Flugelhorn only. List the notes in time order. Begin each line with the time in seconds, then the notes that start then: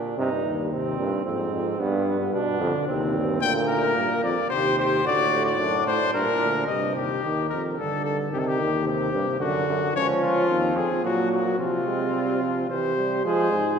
Already playing: D4
0.20 D#4
0.74 C4
1.25 C4
1.79 B3
2.34 D4
2.88 C4
3.42 A#3
4.51 G4
5.05 F#4
5.60 D4
6.14 D4
9.94 C#4
10.48 C4
11.03 A#3
11.58 C4
12.70 G4
13.25 G#4